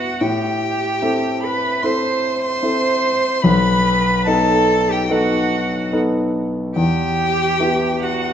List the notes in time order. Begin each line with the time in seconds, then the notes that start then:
Already playing: B3 E4 F#4 B4 F#5
0.21 A2 G4 G5
1.02 C4 E4 A4
1.43 B4 B5
1.82 C4 E4 A4 C5 C6
2.41 C5 C6
2.63 C4 E4 A4
3.43 B1 B4 B5
4.26 B3 D#4 A4 A5
4.90 G4 G5
5.10 B3 D#4 F#4 A4 F#5
5.92 B3 D#4 A4
6.76 E2 G4 G5
7.60 B3 E4 G4
8.02 F#4 F#5